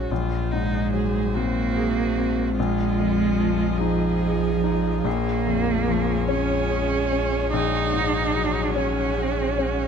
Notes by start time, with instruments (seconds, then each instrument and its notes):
Already playing: grand piano G#2 F#3 C#4 G#4, cello F#3, string section F#3, viola F#4
0.10 sub bass A#1, grand piano A#1, string section G#3 C5, viola F4
0.51 grand piano G#2, cello G#3, viola D#4
0.93 grand piano F#3, viola G#4
1.34 cello A#3, grand piano C4, viola F#4
1.76 grand piano G#4
2.18 grand piano C4
2.56 grand piano A#1, cello G#3, viola F4, string section F4 D#5
3.00 grand piano F2
3.40 grand piano F3
3.78 cello F3, grand piano D#4, viola G#4
4.22 grand piano G#4
4.64 grand piano D#4
5.05 grand piano A#1, sub bass A#1, string section G#3 C#5, cello A#3, viola G#4
5.46 grand piano F2
5.88 grand piano F3
6.28 grand piano C#4, cello C#4
6.69 grand piano G#4
7.12 grand piano C#4
7.53 grand piano A#1, cello D#4, string section F#4
7.93 grand piano G#2
8.36 grand piano F#3
8.76 grand piano C#4, cello C#4
9.17 grand piano G#4
9.58 grand piano C#4